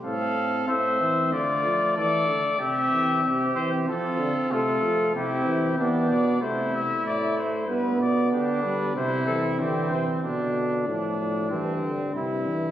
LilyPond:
<<
  \new Staff \with { instrumentName = "Cornet" } { \time 4/4 \key f \major \tempo 4 = 94 f''4 e''4 d''4 d''4 | e''4. c''8 f'4 a'4 | g'4 g'8 d''8 c''8 e''8 d''8 c''8 | b'8 d''8 g'8 b'8 c''8 a'8 g'8 c''8 |
r1 | }
  \new Staff \with { instrumentName = "Trumpet" } { \time 4/4 \key f \major a'4 c''4 f'4 a'4 | g'4 g'4 a'4 f'4 | e'4 d'4 e'2~ | e'8 r8 d'4 e'4 c'4 |
d'4 d'4 c'4 e'4 | }
  \new Staff \with { instrumentName = "Trombone" } { \time 4/4 \key f \major c'4 c'4 a2 | c'2 c'4 a4 | c'4 b4 a8 r8 a4 | b4. g8 c4 e4 |
d4 f8 f8 e8 d8 c8 e8 | }
  \new Staff \with { instrumentName = "Bass trombone" } { \clef bass \time 4/4 \key f \major a,4 a,8 e8 d8 f8 e8 d8 | c8 e8 c8 e8 f8 d8 c8 f8 | c8 e8 e8 b,8 c8 c8 a,8 r8 | g,8 b,8 d8 d8 c8 e8 d8 c8 |
b,4 a,4 g,4 g,4 | }
>>